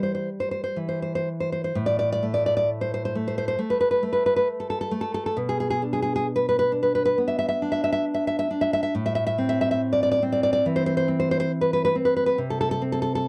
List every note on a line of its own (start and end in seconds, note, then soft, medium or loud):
0.00 0.28 E3 soft
0.00 1.27 G3 soft
0.00 0.13 C5 soft
0.15 0.28 C5 soft
0.40 0.50 C5 soft
0.51 0.62 C5 soft
0.64 0.77 C5 soft
0.76 1.75 E3 soft
0.89 1.01 C5 soft
1.02 1.14 C5 soft
1.15 1.28 C5 soft
1.40 1.51 C5 soft
1.52 1.63 C5 soft
1.64 1.77 C5 soft
1.75 3.54 A2 medium
1.86 1.98 D5 medium
1.99 2.11 D5 medium
2.12 2.24 D5 medium
2.23 3.14 A3 soft
2.34 2.45 D5 medium
2.46 2.55 D5 medium
2.57 2.69 D5 medium
2.81 2.92 C5 soft
2.94 3.04 C5 soft
3.05 3.16 C5 medium
3.15 3.57 A3 soft
3.28 3.37 C5 soft
3.38 3.47 C5 medium
3.48 3.59 C5 medium
3.59 4.02 A3 soft
3.70 3.79 B4 medium
3.81 3.90 B4 medium
3.91 4.02 B4 medium
4.03 4.90 A3 soft
4.13 4.24 B4 medium
4.26 4.35 B4 medium
4.36 4.47 B4 medium
4.60 4.69 A4 soft
4.70 4.80 A4 medium
4.81 4.92 A4 medium
4.91 5.36 A3 soft
5.01 5.13 A4 medium
5.14 5.25 A4 medium
5.26 5.37 A4 medium
5.37 7.14 B2 medium
5.49 5.59 G#4 medium
5.60 5.69 G#4 medium
5.70 5.81 G#4 medium
5.82 6.71 D4 soft
5.93 6.01 G#4 medium
6.02 6.14 G#4 medium
6.16 6.26 G#4 medium
6.36 6.48 B4 medium
6.49 6.58 B4 medium
6.59 6.71 B4 medium
6.72 7.61 D4 soft
6.83 6.94 B4 medium
6.95 7.04 B4 medium
7.05 7.17 B4 medium
7.18 8.48 B3 soft
7.28 7.37 E5 medium
7.39 7.47 E5 medium
7.49 7.61 E5 medium
7.62 8.49 D4 soft
7.72 7.83 E5 medium
7.84 7.91 E5 medium
7.92 8.04 E5 medium
8.14 8.26 E5 medium
8.27 8.38 E5 medium
8.39 8.49 E5 medium
8.51 8.94 D4 soft
8.61 8.71 E5 medium
8.73 8.82 E5 medium
8.83 8.93 E5 medium
8.95 10.62 A2 medium
9.06 9.14 E5 medium
9.15 9.25 E5 medium
9.27 9.37 E5 medium
9.38 10.21 C4 soft
9.49 9.59 E5 medium
9.61 9.70 E5 medium
9.71 9.80 E5 medium
9.93 10.02 D5 medium
10.03 10.10 D5 medium
10.12 10.22 D5 medium
10.22 11.07 C4 soft
10.32 10.42 D5 medium
10.43 10.52 D5 medium
10.53 10.64 D5 medium
10.66 11.95 E3 soft
10.76 10.85 C5 medium
10.86 10.96 C5 medium
10.97 11.08 C5 medium
11.08 11.94 C4 soft
11.20 11.30 C5 medium
11.31 11.39 C5 medium
11.40 11.51 C5 medium
11.61 11.72 B4 medium
11.73 11.83 B4 medium
11.85 11.95 B4 medium
11.95 12.38 C4 soft
12.05 12.15 B4 medium
12.16 12.25 B4 medium
12.26 12.37 B4 medium
12.38 13.28 C3 medium
12.50 12.59 A4 medium
12.61 12.70 A4 medium
12.71 12.82 A4 medium
12.82 13.28 C4 soft
12.92 13.01 A4 medium
13.02 13.14 A4 medium
13.15 13.26 A4 medium